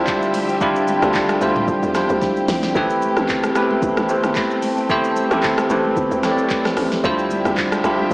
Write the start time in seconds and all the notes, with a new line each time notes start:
Already playing: D3 F3 G3 C4 D4 E4 F4 G4 C5 E5
0.07 kick, clap, high conga, shaker
0.22 shaker
0.34 open hi-hat, high conga, shaker
0.49 shaker
0.61 G3 D4 E4 F4 G4, kick, low conga, shaker
0.76 shaker
0.88 high conga, shaker
1.02 D2 G3 D4 E4 F4 A4, cross-stick, high conga, shaker
1.14 kick, clap, low conga, shaker
1.29 cross-stick, high conga, shaker
1.41 D2 G3 D4 E4 F4 C5, shaker
1.56 mid tom, high conga
1.68 C2, kick, low conga, shaker
1.83 E2, high conga, shaker
1.95 G3 D4 E4 F4 C5, cross-stick, snare, shaker
2.09 D2, shaker
2.22 kick, snare, high conga, shaker
2.36 shaker
2.48 C2, snare, open hi-hat, high conga, shaker
2.63 snare, shaker
2.75 A1 A3 C4 E4 G4 B4, kick, low conga, shaker
2.90 shaker
3.02 high conga, shaker
3.17 A1, cross-stick, high conga, shaker
3.28 kick, clap, low conga, shaker
3.43 cross-stick, high conga, shaker
3.55 G1 A3 B3 E4 G4 B4, cross-stick, shaker
3.62 C4
3.71 high conga
3.82 A1, kick, low conga, shaker
3.97 A1, cross-stick, high conga, shaker
4.09 A3 C4 E4 G4 C5, shaker
4.24 G1, cross-stick, shaker
4.35 kick, clap, high conga, shaker
4.51 shaker
4.62 open hi-hat, high conga, shaker
4.77 shaker
4.89 A3 C4 E4 G4 C5, kick, low conga, shaker
5.04 shaker
5.16 high conga, shaker
5.31 A1 A3 C4 E4 G4 A4, cross-stick, high conga, shaker
5.43 kick, clap, low conga, shaker
5.58 cross-stick, high conga, shaker
5.70 A1 A3 C4 E4 G4 B4, shaker
5.85 high conga
5.96 G1, kick, low conga, shaker
6.11 D2, high conga, shaker
6.23 A3 C4 E4 G4 C#5, cross-stick, snare, shaker
6.32 D5
6.38 C2, shaker
6.50 kick, clap, high conga, shaker
6.65 cross-stick, snare, shaker
6.77 A1, cross-stick, open hi-hat, high conga, shaker
6.92 snare, shaker
7.04 D2 D3 F3 G3 D4 E4 F4 G4 C5 E5, kick, low conga, shaker
7.19 shaker
7.31 high conga, shaker
7.45 D2, cross-stick, high conga, shaker
7.57 kick, clap, low conga, shaker
7.72 cross-stick, high conga, shaker
7.84 C2 G3 D4 E4 F4 G4, cross-stick, shaker
7.99 high conga
8.11 D2, kick, low conga